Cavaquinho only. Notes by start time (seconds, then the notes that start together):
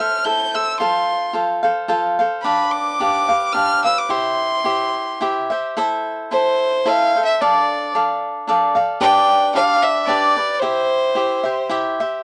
0.00 A4 C5 E5
0.25 E4 A4 C5 E5
0.54 A4 C5 E5
0.80 F4 A4 C5 F5
1.33 F4 A4 C5 F5
1.63 A4 C5 F5
1.88 F4 A4 C5 F5
2.19 A4 C5 F5
2.44 D4 G4 B4 F5
3.00 D4 G4 B4 F5
3.29 G4 B4 F5
3.54 D4 G4 B4 F5
3.84 G4 B4 F5
4.09 E4 G4 C5 E5
4.64 E4 G4 C5 E5
5.21 E4 G4 C5 E5
5.50 G4 C5 E5
5.77 E4 A4 C5 E5
6.31 E4 A4 C5 E5
6.86 E4 A4 C5 E5
7.15 A4 C5 E5
7.41 D4 A4 D5 F5
7.95 D4 A4 D5 F5
8.47 D4 A4 D5 F5
8.75 A4 D5 F5
9.01 D4 G4 B4 D5
9.55 D4 G4 B4 D5
10.07 D4 G4 B4 D5
10.36 G4 B4 D5
10.62 E4 G4 C5 E5
11.15 E4 G4 C5 E5
11.43 G4 C5 E5
11.69 E4 G4 C5 E5
12.00 G4 C5 E5